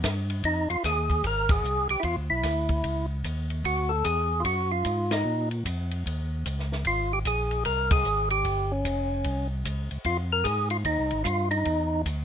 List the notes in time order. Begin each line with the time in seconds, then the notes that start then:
0.03 G2, kick, snare, hi-hat pedal, ride
0.30 ride
0.44 F2 D#4, kick, ride
0.70 F2 F4, ride
0.84 D#2 G#4, kick, snare, hi-hat pedal, ride
1.10 kick, ride
1.24 G#1 A#4, kick, ride
1.49 G#4, kick, ride
1.63 C2, hi-hat pedal
1.89 C2 G4, ride
2.00 E2 E4, kick, ride
2.04 F4
2.17 D2
2.30 B1 E4
2.43 D2, kick, snare, hi-hat pedal, ride
2.69 kick, ride
2.84 C#2, kick, ride
3.24 D#2, kick, hi-hat pedal, ride
3.50 ride
3.64 D2 F#4, kick, ride
3.89 A4
4.05 E2 G#4, kick, hi-hat pedal, ride
4.40 F4
4.44 F#2 F#4, kick, ride
4.72 F4
4.85 G#2, kick, hi-hat pedal, ride
5.11 D#4, snare, ride
5.25 A#2
5.51 ride
5.65 F2, kick, hi-hat pedal, ride
5.91 ride
6.06 D#2, kick, ride
6.46 C#2, kick, hi-hat pedal, ride
6.59 snare
6.72 snare
6.85 G#1 F4, kick, ride
7.13 G4
7.25 A#1 G#4, kick, hi-hat pedal, ride
7.51 ride
7.65 C2 A#4, kick, ride
7.91 G#4, kick, ride
8.04 G#1, hi-hat pedal
8.30 G4, ride
8.44 G1, kick, ride
8.71 C#4
8.85 F1, kick, hi-hat pedal, ride
9.24 C2, kick, ride
9.65 C#2, kick, hi-hat pedal, ride
9.91 C#2, ride
10.04 F2 F4, kick, ride
10.33 A#4
10.44 G#2 G#4, kick, hi-hat pedal, ride
10.70 F4, ride
10.85 D#2 D#4, kick, ride
10.99 C2
11.11 G#1, ride
11.24 G2 F4, kick, hi-hat pedal, ride
11.51 D#4, ride
11.65 E2, kick, ride
12.06 D2, kick, hi-hat pedal, ride